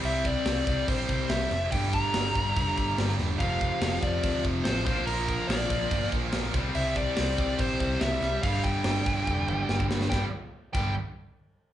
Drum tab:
CC |x-x-x-x-x-x-x-x-|x-x-x-x-x-x-x-x-|x-x-x-x-x-x-x-x-|x-x-x-x-x-x-x-x-|
SD |----o-------ooo-|----o-------ooo-|----o-------o-o-|----o-------ooo-|
T2 |----------------|----------------|----------------|----------------|
BD |--o---o-o-o-----|o-o---o-o-o-----|o-o---o-o-o---o-|--o---o-o-o---o-|

CC |x-x-x-x-x-x-x-x-|x-x-x-x---------|------x---------|
SD |----o-------o-o-|----o-------o-oo|o---------------|
T2 |----------------|----------o-----|----------------|
BD |--o---o-o-o-----|o-o---o-o----o--|o-----o---------|